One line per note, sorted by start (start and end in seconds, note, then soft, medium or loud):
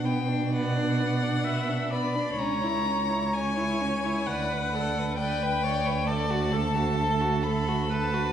0.00 2.34 B2 soft
0.05 0.29 B3 soft
0.05 0.54 G5 medium
0.28 0.51 D4 soft
0.52 0.78 B3 soft
0.52 1.45 D5 soft
0.52 1.92 F#5 medium
0.77 1.02 D4 soft
1.01 1.24 B3 soft
1.23 1.45 D4 soft
1.44 1.70 B3 soft
1.44 1.92 E5 soft
1.69 1.94 D4 soft
1.91 2.17 B3 soft
1.91 2.37 D5 medium
1.91 2.40 B5 medium
2.15 2.39 D4 soft
2.38 4.29 C#2 soft
2.38 2.65 C#4 soft
2.38 4.28 C#5 medium
2.38 3.35 A#5 medium
2.64 2.87 E4 soft
2.85 3.10 C#4 soft
3.09 3.33 E4 soft
3.33 3.58 C#4 soft
3.33 4.28 G#5 medium
3.57 3.83 E4 soft
3.81 4.07 C#4 soft
4.05 4.28 E4 soft
4.27 8.32 D2 medium
4.27 4.74 B4 medium
4.27 4.54 D5 soft
4.27 5.17 F#5 medium
4.53 4.76 B4 soft
4.75 5.18 A4 soft
4.75 5.00 D5 soft
4.98 5.19 B4 soft
5.18 5.65 B4 soft
5.18 5.44 D5 soft
5.18 6.08 G5 medium
5.43 5.66 B4 soft
5.63 6.08 C#5 soft
5.63 5.88 D5 soft
5.87 6.07 B4 soft
6.06 6.32 A4 soft
6.06 6.54 D5 medium
6.06 7.44 A5 medium
6.30 6.54 F#4 soft
6.52 6.77 A4 soft
6.52 7.92 A4 medium
6.75 6.98 F#4 soft
6.99 7.23 A4 soft
7.21 7.45 F#4 soft
7.43 7.70 A4 soft
7.43 7.93 B5 medium
7.68 7.89 F#4 soft
7.90 8.15 A4 soft
7.90 8.32 B4 medium
7.90 8.32 A5 medium
8.14 8.32 F#4 soft